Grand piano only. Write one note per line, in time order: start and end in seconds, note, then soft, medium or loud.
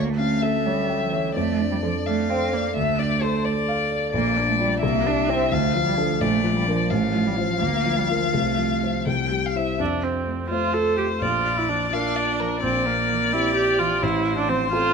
0.00 1.32 D2 soft
0.19 0.56 C#4 soft
0.43 0.80 A4 soft
0.66 1.03 C#5 soft
0.90 1.27 G5 soft
1.13 1.36 C#5 soft
1.36 2.72 F2 soft
1.60 1.97 D4 soft
1.83 2.20 A4 soft
2.06 2.43 D5 soft
2.30 2.66 F5 soft
2.53 2.76 D5 soft
2.76 4.10 D2 soft
2.99 3.35 D4 soft
3.21 3.58 A4 soft
3.45 3.81 D5 soft
3.68 4.05 F5 soft
3.91 4.14 D5 soft
4.13 4.80 A#1 soft
4.37 4.73 D4 soft
4.60 4.80 F4 soft
4.60 4.80 D5 soft
4.83 5.50 C2 soft
5.06 5.42 G3 soft
5.28 5.49 E4 soft
5.28 5.49 C5 soft
5.51 6.19 D2 soft
5.75 6.12 F3 soft
5.97 6.18 D4 soft
5.97 6.19 A4 soft
6.21 6.88 A#1 soft
6.44 6.81 F3 soft
6.68 6.88 D4 soft
6.68 6.89 A#4 soft
6.91 7.60 A1 soft
7.14 7.52 F3 soft
7.38 7.59 F4 soft
7.38 7.59 C5 soft
7.62 8.32 D2 soft
7.86 8.24 F3 soft
8.10 8.32 F4 soft
8.10 8.32 A#4 soft
8.34 9.05 C2 soft
8.58 8.97 F3 soft
8.83 9.05 F4 soft
8.83 9.05 C5 soft
9.07 9.78 C2 soft
9.31 9.70 G3 soft
9.55 9.77 E4 soft
9.55 9.78 C5 soft
9.80 10.49 F2 soft
10.51 11.18 A3 soft
10.51 11.18 F4 soft
10.51 11.18 C5 soft
11.21 11.90 A#1 soft
11.92 12.59 A#3 soft
11.92 12.59 F4 soft
11.92 12.59 A#4 soft
12.63 13.31 A#1 soft
13.33 13.98 C4 soft
13.33 13.99 E4 soft
13.33 13.99 G4 soft
14.03 14.70 A1 soft
14.72 14.94 C4 soft
14.72 14.94 F4 soft
14.72 14.94 A4 soft